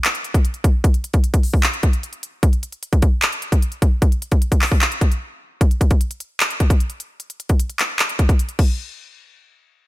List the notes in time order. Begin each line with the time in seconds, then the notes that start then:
0.05 clap, closed hi-hat
0.15 closed hi-hat
0.24 closed hi-hat
0.34 kick, closed hi-hat
0.45 closed hi-hat
0.54 closed hi-hat
0.64 kick, closed hi-hat
0.84 kick, closed hi-hat
0.94 closed hi-hat
1.04 closed hi-hat
1.14 kick, closed hi-hat
1.24 closed hi-hat
1.34 kick, closed hi-hat
1.43 open hi-hat
1.54 kick
1.63 clap, closed hi-hat
1.74 closed hi-hat
1.83 kick, closed hi-hat
1.93 closed hi-hat
2.03 closed hi-hat
2.13 closed hi-hat
2.23 closed hi-hat
2.43 kick, closed hi-hat
2.53 closed hi-hat
2.63 closed hi-hat
2.72 closed hi-hat
2.83 closed hi-hat
2.93 kick, closed hi-hat
3.02 kick, closed hi-hat
3.22 clap, closed hi-hat
3.32 closed hi-hat
3.42 closed hi-hat
3.52 kick, closed hi-hat
3.62 closed hi-hat
3.72 closed hi-hat
3.82 kick, closed hi-hat
4.02 kick, closed hi-hat
4.12 closed hi-hat
4.22 closed hi-hat
4.32 kick, closed hi-hat
4.42 closed hi-hat
4.52 kick, closed hi-hat
4.61 clap, open hi-hat
4.72 kick
4.82 clap, closed hi-hat
4.92 closed hi-hat
5.01 kick, closed hi-hat
5.12 closed hi-hat
5.61 kick, closed hi-hat
5.71 closed hi-hat
5.81 kick, closed hi-hat
5.91 kick, closed hi-hat
6.01 closed hi-hat
6.11 closed hi-hat
6.20 closed hi-hat
6.40 clap, closed hi-hat
6.50 closed hi-hat
6.60 kick, closed hi-hat
6.70 kick, closed hi-hat
6.80 closed hi-hat
6.90 closed hi-hat
7.00 closed hi-hat
7.20 closed hi-hat
7.30 closed hi-hat
7.40 closed hi-hat
7.49 kick, closed hi-hat
7.60 closed hi-hat
7.70 closed hi-hat
7.79 clap, closed hi-hat
7.99 clap, closed hi-hat
8.09 closed hi-hat
8.19 kick, closed hi-hat
8.29 kick, closed hi-hat
8.39 closed hi-hat
8.49 closed hi-hat
8.59 kick, crash